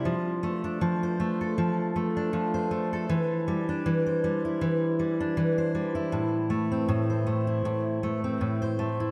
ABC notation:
X:1
M:4/4
L:1/16
Q:"Swing 16ths" 1/4=79
K:C
V:1 name="Steel-string acoustic guitar"
F,2 A, D F, c A, A F,2 A, D F, c A, A | E,2 G, D E, c G, E E,2 G, D E, c G, E | A,,2 A, C A,, c A, E A,,2 A, C A,, c A, E |]